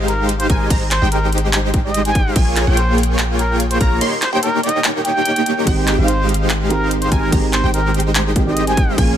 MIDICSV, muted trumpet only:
0, 0, Header, 1, 2, 480
1, 0, Start_track
1, 0, Key_signature, -4, "major"
1, 0, Tempo, 413793
1, 815, Time_signature, 4, 2, 24, 8
1, 10638, End_track
2, 0, Start_track
2, 0, Title_t, "Muted trumpet"
2, 0, Program_c, 0, 59
2, 97, Note_on_c, 0, 70, 92
2, 306, Note_off_c, 0, 70, 0
2, 461, Note_on_c, 0, 72, 96
2, 553, Note_off_c, 0, 72, 0
2, 576, Note_on_c, 0, 70, 89
2, 786, Note_off_c, 0, 70, 0
2, 1054, Note_on_c, 0, 72, 95
2, 1265, Note_off_c, 0, 72, 0
2, 1294, Note_on_c, 0, 70, 94
2, 1505, Note_off_c, 0, 70, 0
2, 2141, Note_on_c, 0, 75, 93
2, 2348, Note_off_c, 0, 75, 0
2, 2383, Note_on_c, 0, 80, 102
2, 2737, Note_off_c, 0, 80, 0
2, 3216, Note_on_c, 0, 72, 94
2, 3426, Note_off_c, 0, 72, 0
2, 3937, Note_on_c, 0, 70, 93
2, 4146, Note_off_c, 0, 70, 0
2, 4302, Note_on_c, 0, 72, 90
2, 4394, Note_off_c, 0, 72, 0
2, 4417, Note_on_c, 0, 70, 93
2, 4626, Note_off_c, 0, 70, 0
2, 4898, Note_on_c, 0, 72, 92
2, 4977, Note_off_c, 0, 72, 0
2, 5025, Note_on_c, 0, 72, 81
2, 5096, Note_off_c, 0, 72, 0
2, 5136, Note_on_c, 0, 70, 96
2, 5346, Note_off_c, 0, 70, 0
2, 5375, Note_on_c, 0, 75, 91
2, 5585, Note_off_c, 0, 75, 0
2, 5856, Note_on_c, 0, 79, 97
2, 6530, Note_off_c, 0, 79, 0
2, 7053, Note_on_c, 0, 72, 96
2, 7264, Note_off_c, 0, 72, 0
2, 7778, Note_on_c, 0, 70, 92
2, 7987, Note_off_c, 0, 70, 0
2, 8141, Note_on_c, 0, 72, 93
2, 8233, Note_off_c, 0, 72, 0
2, 8255, Note_on_c, 0, 70, 92
2, 8465, Note_off_c, 0, 70, 0
2, 8733, Note_on_c, 0, 72, 100
2, 8944, Note_off_c, 0, 72, 0
2, 8974, Note_on_c, 0, 70, 96
2, 9185, Note_off_c, 0, 70, 0
2, 9820, Note_on_c, 0, 75, 97
2, 10028, Note_off_c, 0, 75, 0
2, 10060, Note_on_c, 0, 80, 98
2, 10416, Note_off_c, 0, 80, 0
2, 10638, End_track
0, 0, End_of_file